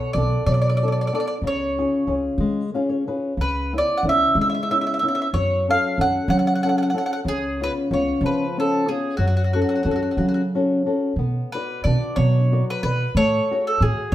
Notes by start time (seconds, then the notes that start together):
Already playing: B2 B3 D4 A4 C#5
0.13 B1 D5
0.18 B3 D4 A4
0.46 B2 F#3 D5
0.54 D5
0.62 D5
0.69 D5
0.77 D5
0.83 B3 D4 A4
0.88 D5
0.92 D5
1.01 D5
1.07 D5
1.13 B3 D4 A4 D5
1.20 D5
1.27 D5
1.42 C#2 C#3
1.47 C#5
1.78 C#4 F4 G#4
2.07 C#2 C#4 F4 G#4
2.38 C#3 G#3
2.74 C#4 F4 G#4 F5
2.89 C#5
3.07 C#4 F4 G#4 B4
3.37 C#2 C#3 B4
3.73 B3 C#4 E4
3.78 D5
3.97 F#5
4.03 C#2 B3 C#4 E4
4.09 E5
4.35 C#3 G#3
4.41 E5
4.49 E5
4.55 E5
4.63 E5
4.70 B3 C#4 E4 E5
4.81 E5
4.87 E5
4.94 E5
4.99 B3 C#4 E4 E5
5.08 E5
5.15 E5
5.22 E5
5.33 F#2 F#3 C#5
5.68 C#4 F#4 A4 F5
5.98 F#2 C#4 F#4 A4 F#5
6.28 C#3 F#3 F#5
6.39 F#5
6.47 F#5
6.55 F#5
6.63 C#4 F#4 A4 F#5
6.69 F#5
6.78 F#5
6.83 F#5
6.90 C#4 F#5
6.94 F#4 A4 F#5
7.06 F#5
7.13 F#5
7.24 C#2 C#3 G#4
7.60 B3 C#4 F4 B4
7.91 C#2 B3 C#4 F4 C#5
8.21 C#3 F3
8.26 B4
8.57 B3 C#4 F4 A4
8.88 B3 C#4 F4 G#4
9.17 F#2 F#3 F#4
9.27 F#4
9.37 F#4
9.44 F#4
9.53 C#4 F#4 A4
9.62 F#4
9.69 F#4
9.76 F#4
9.83 F#2 C#4 F#4 A4
9.91 F#4
9.96 F#4
10.03 F#4
10.11 F#4
10.17 C#3 F#3 F#4
10.28 F#4
10.34 F#4
10.55 C#4 F#4 A4
10.86 C#4 F#4 A4
11.16 B2 B3
11.52 F#4 B4 D5
11.84 B2 D4 F#4 B4 D5
12.16 B2 F#3 C#5
12.52 F#4 B4 D5
12.70 B4
12.83 B2 F#4 B4 D5
13.15 A2 A3 C#5
13.51 F#4 G#4 C#5
13.67 A4
13.81 A2 F#4 G#4